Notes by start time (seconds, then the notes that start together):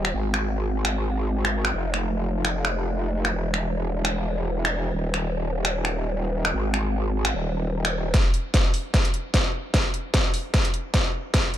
Already playing: D#1
0.05 finger snap
0.14 G#1
0.34 finger snap
0.85 finger snap
1.45 finger snap
1.65 finger snap
1.74 F1
1.94 finger snap
2.45 finger snap
2.65 finger snap
3.25 finger snap
3.34 E1
3.54 finger snap
4.05 finger snap
4.65 finger snap
4.94 D#1
5.14 finger snap
5.65 finger snap
5.85 finger snap
6.45 finger snap
6.54 G#1
6.74 finger snap
7.25 finger snap
7.34 D#1
7.85 finger snap
8.14 kick, snare, closed hi-hat
8.34 closed hi-hat
8.54 kick, snare, closed hi-hat
8.74 open hi-hat
8.94 kick, snare, closed hi-hat
9.05 closed hi-hat
9.14 closed hi-hat
9.34 kick, snare, closed hi-hat
9.74 kick, snare, closed hi-hat
9.94 closed hi-hat
10.14 kick, snare, closed hi-hat
10.34 open hi-hat
10.54 kick, snare, closed hi-hat
10.65 closed hi-hat
10.74 closed hi-hat
10.94 kick, snare, closed hi-hat
11.34 kick, snare, closed hi-hat
11.54 closed hi-hat